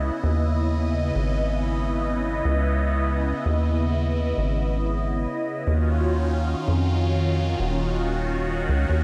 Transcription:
0.00 0.11 C#2 medium
0.00 5.63 C#3 medium
0.00 5.63 B3 medium
0.00 5.63 E4 medium
0.00 5.63 D#5 medium
0.24 1.12 D#2 medium
1.15 2.42 G#1 medium
2.45 3.33 C#2 loud
3.46 4.34 D#2 medium
4.38 5.27 G#1 medium
5.67 6.56 D#2 loud
5.67 9.04 D#3 medium
5.67 9.04 C#4 medium
5.67 8.86 F4 medium
5.67 9.04 F#4 medium
6.68 7.56 F2 medium
7.60 8.69 D#1 medium
8.69 8.86 C#2 loud
8.89 9.04 D#2 loud
8.89 9.04 D#4 medium

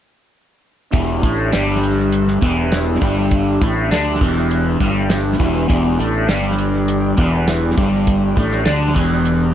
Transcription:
0.91 1.21 E1 medium
0.91 1.22 E2 loud
0.91 1.22 E3 loud
0.91 9.54 D4 medium
0.91 9.54 G4 medium
0.91 5.64 E5 medium
0.91 kick loud
0.91 closed hi-hat medium
1.22 1.51 A1 medium
1.22 1.51 A2 medium
1.22 1.52 A3 medium
1.22 kick loud
1.22 closed hi-hat medium
1.52 2.38 G1 medium
1.52 2.41 G2 medium
1.52 2.41 G3 medium
1.52 snare medium
1.52 closed hi-hat medium
1.52 tambourine medium
1.84 closed hi-hat medium
2.12 closed hi-hat medium
2.28 snare soft
2.42 2.98 E1 medium
2.42 3.00 E2 medium
2.42 3.01 E3 medium
2.42 kick loud
2.42 closed hi-hat medium
2.72 snare loud
2.72 closed hi-hat medium
2.72 tambourine medium
3.00 3.57 G1 medium
3.00 3.60 G2 medium
3.00 3.60 G3 medium
3.00 kick loud
3.00 closed hi-hat medium
3.31 kick loud
3.31 closed hi-hat medium
3.61 3.89 A1 medium
3.61 3.90 A2 medium
3.61 3.90 A3 medium
3.61 kick loud
3.61 closed hi-hat medium
3.91 4.19 D2 medium
3.91 4.20 D3 medium
3.91 4.20 D4 medium
3.91 snare loud
3.91 closed hi-hat medium
3.91 tambourine medium
4.21 4.76 E1 medium
4.21 4.79 E2 medium
4.21 4.79 E3 medium
4.21 kick loud
4.21 closed hi-hat medium
4.51 closed hi-hat medium
4.80 5.36 G1 medium
4.80 5.38 G2 medium
4.80 5.39 G3 loud
4.80 kick loud
4.80 closed hi-hat medium
5.10 snare loud
5.10 closed hi-hat medium
5.10 tambourine medium
5.38 5.67 E1 medium
5.38 5.67 E2 medium
5.38 5.67 E3 loud
5.38 kick medium
5.38 closed hi-hat medium
5.68 5.97 E1 medium
5.68 5.98 E2 loud
5.68 5.98 E3 loud
5.68 9.54 D5 medium
5.68 kick loud
5.68 closed hi-hat medium
5.98 6.27 A1 medium
5.98 6.28 A2 medium
5.98 6.28 A3 medium
5.98 closed hi-hat medium
6.27 7.14 G1 medium
6.27 7.16 G2 medium
6.27 7.17 G3 medium
6.27 snare loud
6.27 closed hi-hat medium
6.27 tambourine medium
6.58 closed hi-hat medium
6.88 closed hi-hat medium
7.17 7.73 E1 medium
7.17 7.76 E2 medium
7.17 7.76 E3 medium
7.17 kick loud
7.17 closed hi-hat medium
7.48 snare loud
7.48 closed hi-hat medium
7.48 tambourine medium
7.77 8.33 G1 medium
7.77 8.36 G2 medium
7.77 8.36 G3 loud
7.77 kick loud
7.77 closed hi-hat medium
8.07 kick loud
8.07 closed hi-hat medium
8.36 8.65 A1 medium
8.36 8.64 A2 medium
8.36 8.65 A3 loud
8.36 kick loud
8.36 closed hi-hat medium
8.51 snare soft
8.64 8.94 D2 medium
8.64 8.94 D3 medium
8.64 8.95 D4 medium
8.64 snare loud
8.64 closed hi-hat medium
8.64 tambourine medium
8.94 9.52 E1 medium
8.94 9.53 E2 medium
8.94 9.53 E3 medium
8.94 kick loud
8.94 closed hi-hat medium
9.25 closed hi-hat medium

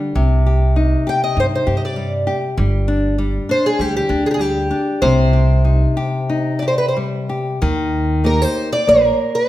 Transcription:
0.00 0.11 D3 medium
0.00 0.15 G3 soft
0.15 0.94 C2 medium
0.15 2.54 C3 medium
0.46 0.76 G4 soft
0.76 1.05 D#4 soft
1.07 1.36 G4 medium
1.07 1.23 G5 medium
1.24 1.38 D#5 medium
1.36 1.56 G2 medium
1.36 1.66 D#4 soft
1.36 1.45 C5 medium
1.55 1.76 C5 medium
1.67 2.26 G2 medium
1.67 1.96 G4 soft
1.77 1.83 D#5 soft
1.85 2.12 D5 medium
1.96 2.26 G3 soft
2.27 2.57 G4 soft
2.57 3.37 G1 medium
2.57 3.17 G3 medium
2.88 3.18 D4 soft
3.18 3.48 G3 soft
3.49 3.79 D4 soft
3.49 3.64 C5 medium
3.66 3.81 G#4 medium
3.79 3.99 D2 medium
3.79 4.09 G3 soft
3.79 3.95 G4 medium
3.97 4.24 G4 medium
4.09 4.70 D2 medium
4.09 4.39 D4 medium
4.26 4.30 G#4 medium
4.31 4.34 G4 medium
4.31 4.41 G#4 medium
4.39 4.70 G3 soft
4.39 5.02 G4 medium
4.71 5.01 D4 soft
5.02 5.85 C2 medium
5.02 7.58 C3 medium
5.02 6.53 C5 medium
5.33 5.64 G4 soft
5.65 5.96 D#4 soft
5.97 6.28 G4 medium
6.29 6.61 D#4 soft
6.59 6.95 G4 soft
6.59 6.67 D5 medium
6.68 6.77 C5 medium
6.78 6.87 B4 medium
6.88 6.97 C5 medium
6.97 7.29 G3 soft
7.29 7.61 G4 soft
7.62 8.44 D#2 medium
7.62 8.23 D#3 medium
8.24 8.75 A#3 soft
8.24 8.75 D#4 soft
8.24 8.75 G4 soft
8.24 8.42 A#4 medium
8.42 8.72 C5 medium
8.72 8.88 D5 medium
8.87 9.08 A#1 medium
8.87 9.48 A#3 soft
8.87 9.37 A#4 medium
9.35 9.49 C5 medium

